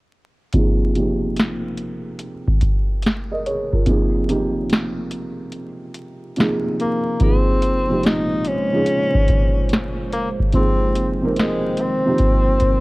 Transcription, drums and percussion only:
0.52 kick medium
0.52 closed hi-hat medium
0.95 closed hi-hat medium
1.36 snare loud
1.36 closed hi-hat medium
1.77 closed hi-hat medium
2.19 closed hi-hat medium
2.48 kick medium
2.61 kick medium
2.61 closed hi-hat medium
3.02 closed hi-hat medium
3.06 snare loud
3.46 closed hi-hat medium
3.73 kick medium
3.86 kick medium
3.86 closed hi-hat medium
4.29 closed hi-hat medium
4.70 snare loud
4.70 closed hi-hat medium
5.11 closed hi-hat medium
5.52 closed hi-hat medium
5.94 closed hi-hat medium
6.36 closed hi-hat medium
6.40 snare loud
6.80 closed hi-hat medium
7.20 kick loud
7.20 closed hi-hat medium
7.62 closed hi-hat medium
8.03 snare loud
8.03 closed hi-hat medium
8.44 closed hi-hat medium
8.86 closed hi-hat medium
9.15 kick medium
9.28 kick medium
9.28 closed hi-hat medium
9.69 snare loud
9.69 closed hi-hat medium
10.13 closed hi-hat medium
10.40 kick medium
10.52 kick medium
10.52 closed hi-hat medium
10.95 closed hi-hat medium
11.36 snare loud
11.36 closed hi-hat medium
11.77 closed hi-hat medium
12.18 kick loud
12.18 closed hi-hat medium
12.60 kick medium
12.60 closed hi-hat medium

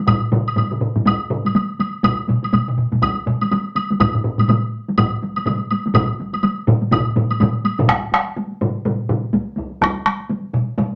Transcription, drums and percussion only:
0.07 taiko medium
0.07 taiko low-mid loud
0.07 taiko high medium
0.07 high woodblock medium
0.32 taiko low-mid loud
0.32 taiko high medium
0.48 high woodblock soft
0.56 taiko low-mid medium
0.56 taiko high medium
0.56 high woodblock soft
0.71 taiko low-mid medium
0.81 taiko low-mid medium
0.96 taiko low-mid medium
0.96 taiko high medium
1.06 taiko medium
1.06 taiko high medium
1.06 high woodblock medium
1.30 taiko low-mid medium
1.45 taiko high medium
1.45 high woodblock soft
1.55 taiko high medium
1.55 high woodblock soft
1.79 taiko high medium
1.79 high woodblock soft
2.03 taiko loud
2.03 taiko mid medium
2.03 taiko high medium
2.03 high woodblock medium
2.28 taiko mid medium
2.28 taiko high medium
2.43 taiko high medium
2.43 high woodblock soft
2.53 taiko mid medium
2.53 taiko high medium
2.53 high woodblock soft
2.68 taiko mid medium
2.78 taiko mid medium
2.92 taiko mid medium
2.92 taiko high medium
3.02 taiko loud
3.02 taiko high medium
3.02 high woodblock medium
3.26 taiko mid medium
3.26 taiko high medium
3.41 taiko high medium
3.41 high woodblock soft
3.51 taiko high medium
3.51 high woodblock soft
3.76 taiko high medium
3.76 high woodblock soft
3.90 taiko high medium
4.00 taiko loud
4.00 taiko low-mid medium
4.00 taiko high medium
4.00 high woodblock medium
4.14 taiko low-mid medium
4.24 taiko low-mid medium
4.38 taiko low-mid medium
4.38 taiko high medium
4.38 high woodblock soft
4.48 taiko low-mid medium
4.48 taiko high medium
4.48 high woodblock soft
4.88 taiko high medium
4.98 taiko loud
4.98 taiko low-mid medium
4.98 taiko high medium
4.98 high woodblock medium
5.22 taiko high medium
5.36 taiko high medium
5.36 high woodblock soft
5.46 taiko low-mid medium
5.46 taiko high medium
5.46 high woodblock soft
5.71 taiko high medium
5.71 high woodblock soft
5.86 taiko high medium
5.94 taiko loud
5.94 taiko low-mid loud
5.94 taiko mid loud
5.94 taiko high medium
5.94 high woodblock medium
6.20 taiko high medium
6.34 taiko high medium
6.34 high woodblock soft
6.43 taiko high medium
6.43 high woodblock soft
6.67 taiko low-mid loud
6.67 taiko mid medium
6.67 taiko high medium
6.82 taiko high medium
6.92 taiko loud
6.92 taiko low-mid loud
6.92 taiko mid loud
6.92 taiko high medium
6.92 high woodblock medium
7.16 taiko low-mid medium
7.16 taiko mid medium
7.16 taiko high medium
7.31 taiko high medium
7.31 high woodblock soft
7.40 taiko low-mid medium
7.40 taiko mid loud
7.40 taiko high medium
7.40 high woodblock soft
7.64 taiko high medium
7.64 high woodblock soft
7.79 taiko low-mid loud
7.79 taiko mid medium
7.79 taiko high medium
7.88 taiko rim medium
7.88 taiko loud
7.88 taiko high medium
8.03 taiko high soft
8.12 taiko rim medium
8.12 taiko high medium
8.28 taiko high soft
8.37 taiko high medium
8.52 taiko high soft
8.61 taiko low-mid loud
8.61 taiko high medium
8.75 taiko high soft
8.85 taiko low-mid loud
8.85 taiko high medium
9.00 taiko high soft
9.09 taiko low-mid loud
9.09 taiko high medium
9.25 taiko high soft
9.33 taiko medium
9.33 taiko high medium
9.57 taiko medium
9.57 taiko high medium
9.72 taiko high soft
9.81 taiko rim medium
9.81 taiko loud
9.81 taiko high medium
9.96 taiko high soft
10.06 taiko rim medium
10.06 taiko high medium
10.20 taiko high soft
10.29 taiko high medium
10.44 taiko high soft
10.53 taiko mid medium
10.53 taiko high medium
10.78 taiko mid loud
10.78 taiko high medium
10.92 taiko high soft

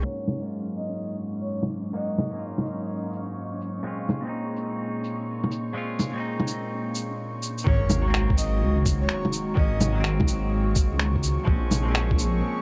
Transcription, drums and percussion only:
0.28 low bongo soft
0.28 shaker medium
0.75 shaker medium
1.23 shaker medium
1.63 low bongo soft
1.70 shaker soft
2.18 low bongo soft
2.18 shaker medium
2.58 low bongo medium
2.66 shaker soft
3.13 shaker medium
3.61 shaker medium
4.09 low bongo soft
4.09 shaker medium
4.56 shaker soft
5.04 shaker medium
5.44 low bongo soft
5.51 shaker medium
5.99 low bongo soft
5.99 shaker medium
6.40 low bongo medium
6.47 shaker soft
6.95 shaker soft
7.43 shaker soft
7.58 shaker soft
7.67 kick loud
7.90 low bongo medium
7.90 shaker medium
8.14 finger snap loud
8.30 kick loud
8.38 shaker medium
8.86 kick loud
8.86 shaker medium
9.09 finger snap loud
9.25 low bongo soft
9.33 shaker medium
9.57 kick loud
9.81 low bongo medium
9.81 shaker medium
10.04 finger snap loud
10.20 kick loud
10.20 low bongo medium
10.28 shaker medium
10.75 kick loud
10.75 shaker medium
10.99 finger snap loud
11.16 kick medium
11.23 shaker medium
11.47 kick loud
11.71 low bongo medium
11.71 shaker medium
11.95 finger snap loud
12.11 kick loud
12.19 shaker medium

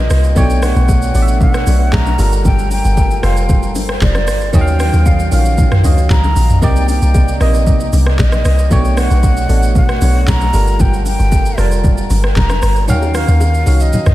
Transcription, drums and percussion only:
0.10 cross-stick loud
0.10 open hi-hat medium
0.10 shaker loud
0.24 shaker medium
0.36 kick loud
0.36 low conga medium
0.36 shaker medium
0.50 shaker medium
0.62 cross-stick loud
0.62 open hi-hat medium
0.62 low bongo medium
0.62 shaker loud
0.76 shaker medium
0.88 kick medium
0.88 high bongo medium
0.88 shaker medium
1.02 shaker medium
1.15 open hi-hat soft
1.15 shaker medium
1.28 shaker medium
1.41 kick loud
1.41 low conga medium
1.41 shaker medium
1.54 cross-stick loud
1.54 shaker medium
1.67 open hi-hat medium
1.67 low bongo medium
1.67 shaker loud
1.93 kick medium
1.93 clap medium
1.93 high bongo medium
1.93 low conga medium
1.93 shaker medium
2.06 low bongo medium
2.06 shaker soft
2.19 open hi-hat medium
2.19 shaker loud
2.32 shaker medium
2.45 kick loud
2.45 low conga medium
2.45 shaker medium
2.59 shaker medium
2.71 open hi-hat medium
2.71 low bongo medium
2.71 shaker medium
2.85 shaker medium
2.97 kick medium
2.97 high bongo medium
2.97 shaker medium
3.11 shaker medium
3.23 cross-stick loud
3.23 open hi-hat soft
3.23 shaker medium
3.37 shaker medium
3.49 kick loud
3.49 low conga medium
3.49 shaker medium
3.63 shaker medium
3.75 open hi-hat medium
3.75 low bongo medium
3.75 shaker loud
3.89 cross-stick loud
4.01 kick medium
4.01 clap medium
4.01 high bongo medium
4.01 low conga medium
4.01 shaker medium
4.15 cross-stick loud
4.15 low bongo medium
4.15 shaker soft
4.28 cross-stick loud
4.28 open hi-hat medium
4.28 shaker loud
4.41 shaker medium
4.54 kick loud
4.54 low conga medium
4.54 shaker medium
4.67 shaker medium
4.80 cross-stick loud
4.80 open hi-hat medium
4.80 low bongo medium
4.80 shaker medium
4.93 shaker medium
5.06 kick medium
5.06 high bongo medium
5.06 shaker medium
5.19 shaker medium
5.32 open hi-hat medium
5.32 shaker medium
5.46 shaker medium
5.58 kick loud
5.58 low conga medium
5.58 shaker medium
5.72 cross-stick loud
5.72 mid tom medium
5.72 shaker medium
5.84 open hi-hat medium
5.84 low bongo medium
5.84 shaker loud
5.98 shaker soft
6.10 kick medium
6.10 clap medium
6.10 high bongo medium
6.10 low conga medium
6.10 shaker medium
6.24 low bongo medium
6.24 shaker medium
6.36 open hi-hat medium
6.36 shaker medium
6.50 mid tom medium
6.50 shaker medium
6.62 kick loud
6.62 low conga medium
6.62 shaker medium
6.76 shaker medium
6.88 open hi-hat medium
6.88 low bongo medium
6.88 shaker medium
7.02 shaker medium
7.14 kick medium
7.14 high bongo medium
7.14 shaker medium
7.28 shaker medium
7.41 cross-stick medium
7.41 open hi-hat soft
7.41 shaker medium
7.54 shaker medium
7.67 kick loud
7.67 low conga medium
7.67 shaker medium
7.80 shaker soft
7.93 open hi-hat medium
7.93 low bongo medium
7.93 shaker loud
8.06 cross-stick loud
8.19 kick medium
8.19 clap medium
8.19 high bongo medium
8.19 low conga medium
8.19 shaker medium
8.32 cross-stick loud
8.32 low bongo medium
8.32 shaker medium
8.45 cross-stick loud
8.45 open hi-hat medium
8.45 shaker loud
8.59 shaker medium
8.71 kick loud
8.71 low conga medium
8.71 shaker medium
8.85 shaker medium
8.97 cross-stick loud
8.97 open hi-hat medium
8.97 low bongo medium
8.97 shaker medium
9.11 shaker medium
9.23 kick medium
9.23 high bongo medium
9.23 shaker medium
9.37 shaker medium
9.49 open hi-hat soft
9.49 shaker medium
9.63 shaker medium
9.75 kick loud
9.75 low conga medium
9.75 shaker medium
9.89 cross-stick loud
9.89 shaker soft
10.02 open hi-hat medium
10.02 low bongo medium
10.02 shaker loud
10.27 kick medium
10.27 clap medium
10.27 high bongo medium
10.27 low conga medium
10.27 shaker medium
10.41 low bongo medium
10.41 shaker soft
10.54 open hi-hat medium
10.54 shaker loud
10.67 shaker medium
10.80 kick loud
10.80 low conga medium
10.80 shaker medium
10.93 shaker medium
11.06 open hi-hat medium
11.06 low bongo medium
11.06 shaker medium
11.19 shaker medium
11.32 kick medium
11.32 high bongo medium
11.32 shaker medium
11.46 shaker medium
11.58 cross-stick medium
11.58 open hi-hat soft
11.58 shaker medium
11.72 shaker medium
11.84 kick loud
11.84 low conga medium
11.84 shaker medium
11.98 shaker soft
12.10 open hi-hat medium
12.10 low bongo medium
12.10 shaker loud
12.24 cross-stick loud
12.36 kick medium
12.36 clap medium
12.36 high bongo medium
12.36 low conga medium
12.36 shaker medium
12.50 cross-stick loud
12.50 low bongo medium
12.50 shaker medium
12.62 cross-stick loud
12.62 open hi-hat medium
12.62 shaker medium
12.76 shaker medium
12.88 low conga medium
12.88 shaker medium
13.02 high bongo medium
13.02 shaker medium
13.14 cross-stick loud
13.14 open hi-hat medium
13.14 low bongo medium
13.14 shaker loud
13.28 shaker medium
13.41 high bongo medium
13.41 shaker medium
13.54 shaker medium
13.66 open hi-hat soft
13.66 high bongo soft
13.66 shaker medium
13.80 shaker medium
13.93 low conga medium
13.93 shaker medium
14.06 cross-stick loud
14.06 mid tom loud
14.06 shaker medium

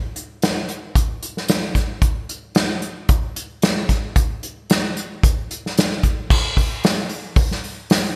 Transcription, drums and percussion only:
0.16 closed hi-hat medium
0.42 snare loud
0.42 closed hi-hat medium
0.69 closed hi-hat medium
0.95 kick loud
0.95 closed hi-hat loud
1.23 closed hi-hat medium
1.37 snare soft
1.48 snare loud
1.48 closed hi-hat medium
1.75 kick medium
1.75 snare soft
1.75 closed hi-hat medium
2.02 kick loud
2.02 closed hi-hat medium
2.29 closed hi-hat medium
2.55 snare loud
2.55 closed hi-hat medium
2.82 closed hi-hat medium
3.09 kick loud
3.09 closed hi-hat medium
3.36 closed hi-hat medium
3.62 snare loud
3.62 closed hi-hat medium
3.89 kick medium
3.89 snare soft
3.89 closed hi-hat medium
4.16 kick loud
4.16 closed hi-hat medium
4.43 closed hi-hat medium
4.70 snare loud
4.70 closed hi-hat medium
4.97 closed hi-hat medium
5.23 kick loud
5.23 closed hi-hat loud
5.51 closed hi-hat medium
5.66 snare soft
5.77 snare loud
5.77 closed hi-hat loud
6.03 kick medium
6.03 closed hi-hat medium
6.30 kick loud
6.30 crash loud
6.57 kick medium
6.57 open hi-hat medium
6.84 snare loud
6.84 open hi-hat medium
7.09 open hi-hat medium
7.36 kick loud
7.36 open hi-hat medium
7.51 snare soft
7.64 open hi-hat medium
7.90 snare loud
7.90 open hi-hat medium

